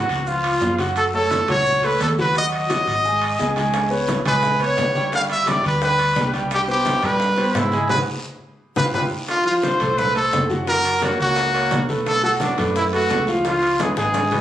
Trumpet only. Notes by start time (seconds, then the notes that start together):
Already playing: F#4
0.28 F4
0.97 A4
1.15 A4
1.50 C#5
1.85 B4
2.02 A4
2.20 B4
2.38 D#5
2.55 D#5
4.27 B4
4.63 C#5
5.15 F5
5.32 E5
5.49 D5
5.67 B4
5.83 B4
6.54 G4
6.71 G4
7.05 B4
7.57 E4
7.90 B4
8.77 B4
8.94 B4
9.30 F4
9.46 F4
9.64 C5
9.98 B4
10.16 A4
10.68 A#4
11.03 F#4
11.21 F#4
12.07 A4
12.24 A4
12.42 D4
12.77 E4
12.95 F#4
13.47 F4
13.81 G#4
13.98 G#4